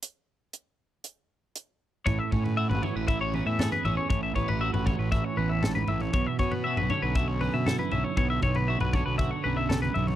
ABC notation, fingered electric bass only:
X:1
M:4/4
L:1/16
Q:1/4=118
K:A
V:1 name="Fingered electric bass" clef=bass
z16 | A,,, z A,,3 A,,, z A,,,4 A,,2 z A,,, z | A,,,2 A,,,3 A,,,2 A,,,2 z A,,,4 A,,,2 | B,,, z B,,3 B,,, z B,,,4 B,,2 z B,,, z |
B,,,2 B,,,3 B,,,2 B,,,2 z B,,,4 B,,,2 |]